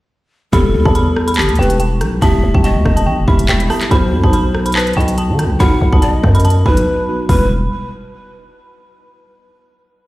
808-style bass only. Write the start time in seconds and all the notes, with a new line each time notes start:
0.53 E1
0.74 E2
0.85 E2
1.38 F#1
1.49 E2
1.59 E1
2.01 B1
2.22 E1
2.43 E1
2.55 E1
2.76 E2
2.85 E1
3.07 B1
3.18 E1
3.28 E1
3.49 E1
3.91 B1
4.12 F#2
4.24 B1
4.97 B1
5.29 D#3
5.45 B1
5.60 B1
5.81 B1
5.93 B1
6.24 F#2
6.66 B1
7.29 E1